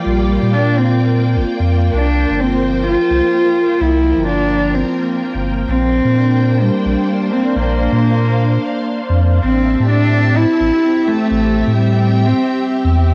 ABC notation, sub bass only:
X:1
M:4/4
L:1/16
Q:"Swing 16ths" 1/4=128
K:Aphr
V:1 name="Sub bass" clef=bass
B,,,3 B,,8 F,,, z F,,3 | C,,3 G,,,6 z C,, z4 z | C,,3 G,,,6 z4 G,,,3 | B,,,3 B,,6 z B,,, z4 z |
B,,,3 B,,6 z4 F,,3 | A,,,3 A,,6 z A,,, z4 z | A,,,3 A,,6 z4 E,,3 |]